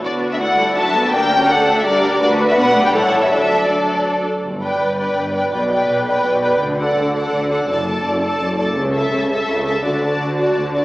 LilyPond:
<<
  \new Staff \with { instrumentName = "Violin section" } { \time 3/4 \key d \major \tempo 4 = 166 d''8. e''16 fis''4 a''4 | g''4 fis''8. e''16 d''4 | d''8. e''16 fis''8. g''16 fis''8. e''16 | e''4 d''4. r8 |
\key g \major r8 g''4 g''4 g''8 | g''8 g''4 g''4 g''8 | r8 fis''4 fis''4 fis''8 | a''8 a''4 a''4 a''8 |
\key a \major r8 a''4 a''4 a''8 | a''8 a''4 a''4 a''8 | }
  \new Staff \with { instrumentName = "Violin section" } { \time 3/4 \key d \major << { d''4 d''4 e''4 | d''4 d''4 d''4 | d''4 d''4 cis''4 | d''4 d''4. r8 |
\key g \major r8 d''4 d''4 d''8 | d''8 d''4 d''4 d''8 | r8 d''4 d''4 d''8 | d''8 d''4 d''4 d''8 |
\key a \major r8 e''4 e''4 e''8 | d''8 d''4 d''4 d''8 | } \\ { fis'2 fis'4 | g'4 a'4 bes'4 | fis'4 fis'8 g'8 a'4 | a'4 a'4. r8 |
r2. | r2. | r2. | r2. |
r2. | r2. | } >> }
  \new Staff \with { instrumentName = "Viola section" } { \time 3/4 \key d \major << { b4 a8 g8 fis8 b8 | bes4 a4 g4 | a4 b8 a8 g4 | fis4 fis4. r8 |
\key g \major r8 b'4 b'4 b'8 | b'8 b'4 b'4 b'8 | r8 a'4 a'4 a'8 | a'8 a'4 a'4 a'8 |
\key a \major r8 a'4 a'4 a'8 | fis'8 fis'4 fis'4 fis'8 | } \\ { d'4 e'4 d'4 | d'8 cis'8 d'4 d'4 | d'4 d'4 e'4 | d'4 d'4. r8 |
r2. | r2. | r2. | r2. |
r2. | r2. | } >> }
  \new Staff \with { instrumentName = "Cello section" } { \clef bass \time 3/4 \key d \major r4 a'2 | bes'4 a'4 g'4 | b'2 a'4 | a'2~ a'8 r8 |
\key g \major g,4 g,4 g,4 | b,4 b,4 b,4 | d4 d4 d4 | fis,4 fis,4 fis,4 |
\key a \major cis4 cis4 cis4 | d4 d4 d4 | }
  \new Staff \with { instrumentName = "Double bass section" } { \clef bass \time 3/4 \key d \major d,2.~ | d,2. | d,4 b,,4 a,,4 | d,2~ d,8 r8 |
\key g \major g,,4 g,,4 g,,4 | b,,4 b,,4 b,,4 | d,4 d,4 d,4 | fis,,4 fis,,4 fis,,4 |
\key a \major cis,4 cis,4 cis,4 | d,4 d,4 d,4 | }
>>